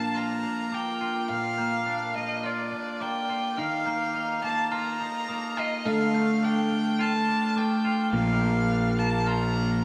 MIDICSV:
0, 0, Header, 1, 6, 480
1, 0, Start_track
1, 0, Key_signature, -2, "major"
1, 0, Tempo, 569260
1, 1099, Time_signature, 4, 2, 24, 8
1, 8300, End_track
2, 0, Start_track
2, 0, Title_t, "Glockenspiel"
2, 0, Program_c, 0, 9
2, 130, Note_on_c, 0, 89, 44
2, 609, Note_on_c, 0, 86, 46
2, 614, Note_off_c, 0, 89, 0
2, 851, Note_on_c, 0, 89, 42
2, 853, Note_off_c, 0, 86, 0
2, 1079, Note_off_c, 0, 89, 0
2, 1089, Note_on_c, 0, 89, 51
2, 1331, Note_on_c, 0, 91, 43
2, 1334, Note_off_c, 0, 89, 0
2, 1815, Note_off_c, 0, 91, 0
2, 2052, Note_on_c, 0, 89, 48
2, 2533, Note_on_c, 0, 86, 47
2, 2536, Note_off_c, 0, 89, 0
2, 2772, Note_on_c, 0, 89, 43
2, 2776, Note_off_c, 0, 86, 0
2, 3002, Note_off_c, 0, 89, 0
2, 3012, Note_on_c, 0, 89, 52
2, 3254, Note_on_c, 0, 91, 44
2, 3256, Note_off_c, 0, 89, 0
2, 3737, Note_off_c, 0, 91, 0
2, 3977, Note_on_c, 0, 89, 52
2, 4456, Note_on_c, 0, 87, 50
2, 4459, Note_off_c, 0, 89, 0
2, 4697, Note_on_c, 0, 89, 46
2, 4698, Note_off_c, 0, 87, 0
2, 4927, Note_off_c, 0, 89, 0
2, 4937, Note_on_c, 0, 89, 53
2, 5179, Note_off_c, 0, 89, 0
2, 5180, Note_on_c, 0, 91, 45
2, 5661, Note_off_c, 0, 91, 0
2, 5900, Note_on_c, 0, 89, 47
2, 6376, Note_on_c, 0, 86, 47
2, 6380, Note_off_c, 0, 89, 0
2, 6614, Note_on_c, 0, 89, 43
2, 6618, Note_off_c, 0, 86, 0
2, 6847, Note_off_c, 0, 89, 0
2, 6857, Note_on_c, 0, 89, 54
2, 7090, Note_on_c, 0, 91, 45
2, 7099, Note_off_c, 0, 89, 0
2, 7575, Note_off_c, 0, 91, 0
2, 7810, Note_on_c, 0, 89, 51
2, 8295, Note_off_c, 0, 89, 0
2, 8300, End_track
3, 0, Start_track
3, 0, Title_t, "Violin"
3, 0, Program_c, 1, 40
3, 0, Note_on_c, 1, 81, 46
3, 135, Note_on_c, 1, 82, 50
3, 148, Note_off_c, 1, 81, 0
3, 625, Note_on_c, 1, 79, 45
3, 638, Note_off_c, 1, 82, 0
3, 1100, Note_off_c, 1, 79, 0
3, 1105, Note_on_c, 1, 77, 54
3, 1788, Note_off_c, 1, 77, 0
3, 1825, Note_on_c, 1, 75, 49
3, 2068, Note_on_c, 1, 74, 49
3, 2081, Note_off_c, 1, 75, 0
3, 2540, Note_on_c, 1, 79, 50
3, 2552, Note_off_c, 1, 74, 0
3, 3025, Note_on_c, 1, 77, 57
3, 3037, Note_off_c, 1, 79, 0
3, 3737, Note_off_c, 1, 77, 0
3, 3742, Note_on_c, 1, 81, 57
3, 3982, Note_on_c, 1, 82, 53
3, 3995, Note_off_c, 1, 81, 0
3, 4711, Note_on_c, 1, 75, 49
3, 4723, Note_off_c, 1, 82, 0
3, 4947, Note_on_c, 1, 77, 55
3, 4960, Note_off_c, 1, 75, 0
3, 5428, Note_on_c, 1, 79, 52
3, 5441, Note_off_c, 1, 77, 0
3, 5904, Note_on_c, 1, 81, 59
3, 5916, Note_off_c, 1, 79, 0
3, 6382, Note_on_c, 1, 79, 50
3, 6394, Note_off_c, 1, 81, 0
3, 6857, Note_off_c, 1, 79, 0
3, 6862, Note_on_c, 1, 77, 55
3, 7575, Note_on_c, 1, 81, 55
3, 7587, Note_off_c, 1, 77, 0
3, 7813, Note_on_c, 1, 82, 58
3, 7825, Note_off_c, 1, 81, 0
3, 8300, Note_off_c, 1, 82, 0
3, 8300, End_track
4, 0, Start_track
4, 0, Title_t, "Clean electric guitar"
4, 0, Program_c, 2, 27
4, 0, Note_on_c, 2, 46, 40
4, 0, Note_on_c, 2, 58, 36
4, 0, Note_on_c, 2, 62, 38
4, 125, Note_on_c, 2, 65, 44
4, 354, Note_off_c, 2, 62, 0
4, 364, Note_on_c, 2, 62, 38
4, 374, Note_off_c, 2, 46, 0
4, 602, Note_off_c, 2, 58, 0
4, 605, Note_on_c, 2, 58, 37
4, 847, Note_off_c, 2, 65, 0
4, 850, Note_on_c, 2, 65, 41
4, 1089, Note_on_c, 2, 46, 45
4, 1332, Note_off_c, 2, 58, 0
4, 1335, Note_on_c, 2, 58, 40
4, 1560, Note_off_c, 2, 62, 0
4, 1570, Note_on_c, 2, 62, 42
4, 1801, Note_off_c, 2, 58, 0
4, 1812, Note_on_c, 2, 58, 36
4, 2053, Note_off_c, 2, 65, 0
4, 2056, Note_on_c, 2, 65, 44
4, 2284, Note_off_c, 2, 62, 0
4, 2294, Note_off_c, 2, 46, 0
4, 2294, Note_on_c, 2, 62, 40
4, 2526, Note_off_c, 2, 58, 0
4, 2536, Note_on_c, 2, 58, 41
4, 2773, Note_off_c, 2, 65, 0
4, 2777, Note_on_c, 2, 65, 41
4, 3014, Note_on_c, 2, 51, 47
4, 3017, Note_off_c, 2, 62, 0
4, 3018, Note_off_c, 2, 58, 0
4, 3039, Note_off_c, 2, 65, 0
4, 3252, Note_on_c, 2, 58, 41
4, 3493, Note_on_c, 2, 63, 42
4, 3726, Note_off_c, 2, 58, 0
4, 3736, Note_on_c, 2, 58, 40
4, 3975, Note_on_c, 2, 65, 49
4, 4208, Note_off_c, 2, 63, 0
4, 4218, Note_off_c, 2, 51, 0
4, 4218, Note_on_c, 2, 63, 39
4, 4450, Note_off_c, 2, 58, 0
4, 4460, Note_on_c, 2, 58, 44
4, 4696, Note_off_c, 2, 65, 0
4, 4699, Note_on_c, 2, 65, 46
4, 4939, Note_off_c, 2, 63, 0
4, 4941, Note_off_c, 2, 58, 0
4, 4943, Note_on_c, 2, 50, 45
4, 5181, Note_on_c, 2, 57, 38
4, 5420, Note_on_c, 2, 62, 44
4, 5648, Note_off_c, 2, 57, 0
4, 5658, Note_on_c, 2, 57, 39
4, 5892, Note_off_c, 2, 65, 0
4, 5895, Note_on_c, 2, 65, 50
4, 6136, Note_off_c, 2, 62, 0
4, 6139, Note_on_c, 2, 62, 41
4, 6142, Note_off_c, 2, 50, 0
4, 6364, Note_off_c, 2, 57, 0
4, 6374, Note_on_c, 2, 57, 43
4, 6613, Note_off_c, 2, 65, 0
4, 6616, Note_on_c, 2, 65, 42
4, 6855, Note_on_c, 2, 46, 45
4, 6857, Note_off_c, 2, 57, 0
4, 7097, Note_on_c, 2, 58, 38
4, 7334, Note_off_c, 2, 62, 0
4, 7337, Note_on_c, 2, 62, 41
4, 7573, Note_off_c, 2, 58, 0
4, 7576, Note_on_c, 2, 58, 40
4, 7813, Note_off_c, 2, 65, 0
4, 7816, Note_on_c, 2, 65, 49
4, 8050, Note_off_c, 2, 62, 0
4, 8057, Note_off_c, 2, 46, 0
4, 8060, Note_on_c, 2, 62, 41
4, 8295, Note_off_c, 2, 58, 0
4, 8300, Note_off_c, 2, 62, 0
4, 8300, Note_off_c, 2, 65, 0
4, 8300, End_track
5, 0, Start_track
5, 0, Title_t, "Pedal steel guitar"
5, 0, Program_c, 3, 26
5, 0, Note_on_c, 3, 53, 36
5, 0, Note_on_c, 3, 58, 33
5, 0, Note_on_c, 3, 62, 34
5, 0, Note_on_c, 3, 70, 42
5, 2980, Note_off_c, 3, 62, 0
5, 3020, Note_on_c, 3, 63, 36
5, 4900, Note_off_c, 3, 70, 0
5, 4902, Note_off_c, 3, 58, 0
5, 4921, Note_off_c, 3, 63, 0
5, 4935, Note_on_c, 3, 57, 36
5, 4937, Note_on_c, 3, 62, 39
5, 4939, Note_on_c, 3, 69, 45
5, 6840, Note_off_c, 3, 57, 0
5, 6841, Note_off_c, 3, 69, 0
5, 6855, Note_on_c, 3, 58, 35
5, 6860, Note_on_c, 3, 70, 45
5, 8300, Note_off_c, 3, 53, 0
5, 8300, Note_off_c, 3, 58, 0
5, 8300, Note_off_c, 3, 62, 0
5, 8300, Note_off_c, 3, 70, 0
5, 8300, End_track
6, 0, Start_track
6, 0, Title_t, "Picked electric bass"
6, 0, Program_c, 4, 34
6, 6854, Note_on_c, 4, 34, 47
6, 8300, Note_off_c, 4, 34, 0
6, 8300, End_track
0, 0, End_of_file